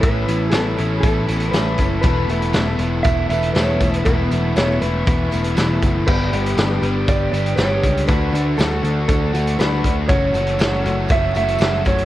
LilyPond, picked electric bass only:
\new Staff \with { instrumentName = "Picked electric bass" } { \clef bass \time 4/4 \key e \mixolydian \tempo 4 = 119 a,,8 a,,8 a,,8 a,,8 a,,8 a,,8 a,,8 fis,,8 | e,,8 e,,8 e,,8 e,,8 e,,8 e,,8 e,,8 e,,8 | e,,8 e,,8 e,,8 e,,8 e,,8 e,,8 e,,8 fis,,8 | g,,8 g,,8 g,,8 g,,8 g,,8 g,,8 g,,8 cis,8 |
d,8 d,8 d,8 d,8 d,8 d,8 d,8 d,8 | fis,,8 fis,,8 fis,,8 fis,,8 fis,,8 fis,,8 fis,,8 fis,,8 | }